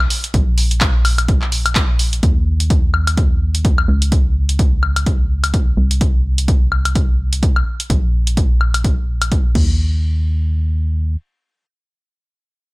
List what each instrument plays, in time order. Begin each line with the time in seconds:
0.00 high woodblock
0.10 open hi-hat
0.24 closed hi-hat
0.34 fm bass A#1, kick, closed hi-hat
0.58 open hi-hat
0.71 closed hi-hat
0.81 kick, clap, closed hi-hat
1.05 open hi-hat, high woodblock
1.18 closed hi-hat, high woodblock
1.28 kick, closed hi-hat
1.42 clap
1.52 open hi-hat
1.66 closed hi-hat, high woodblock
1.75 kick, clap, closed hi-hat
1.99 open hi-hat
2.13 closed hi-hat
2.23 fm bass D#2, kick, closed hi-hat
2.60 closed hi-hat
2.70 kick, closed hi-hat
2.94 high woodblock
3.07 closed hi-hat, high woodblock
3.17 kick, closed hi-hat
3.55 closed hi-hat
3.65 kick, closed hi-hat
3.78 high woodblock
3.88 fm bass C#2
4.02 closed hi-hat
4.12 kick, closed hi-hat
4.49 closed hi-hat
4.59 kick, closed hi-hat
4.83 high woodblock
4.96 closed hi-hat, high woodblock
5.06 kick, closed hi-hat
5.44 closed hi-hat, high woodblock
5.54 kick, closed hi-hat
5.77 fm bass C2
5.91 closed hi-hat
6.01 kick, closed hi-hat
6.38 closed hi-hat
6.48 kick, closed hi-hat
6.72 high woodblock
6.85 closed hi-hat, high woodblock
6.95 kick, closed hi-hat
7.33 closed hi-hat
7.43 kick, closed hi-hat
7.56 high woodblock
7.80 closed hi-hat
7.90 fm bass A#1, kick, closed hi-hat
8.27 closed hi-hat
8.37 kick, closed hi-hat
8.61 high woodblock
8.74 closed hi-hat, high woodblock
8.84 kick, closed hi-hat
9.22 closed hi-hat, high woodblock
9.32 kick, closed hi-hat
9.55 fm bass D#2, kick, crash